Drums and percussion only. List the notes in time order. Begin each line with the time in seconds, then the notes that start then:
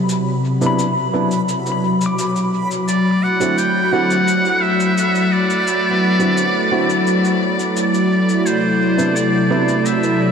0.09 cabasa
0.62 cabasa
0.79 cabasa
1.31 cabasa
1.49 cabasa
1.66 cabasa
2.01 cabasa
2.18 cabasa
2.36 cabasa
2.71 cabasa
2.88 cabasa
3.41 cabasa
3.58 cabasa
4.10 cabasa
4.28 cabasa
4.45 cabasa
4.80 cabasa
4.97 cabasa
5.15 cabasa
5.50 cabasa
5.67 cabasa
6.20 cabasa
6.37 cabasa
6.90 cabasa
7.07 cabasa
7.25 cabasa
7.59 cabasa
7.77 cabasa
7.94 cabasa
8.29 cabasa
8.46 cabasa
8.99 cabasa
9.16 cabasa
9.68 cabasa
9.86 cabasa
10.03 cabasa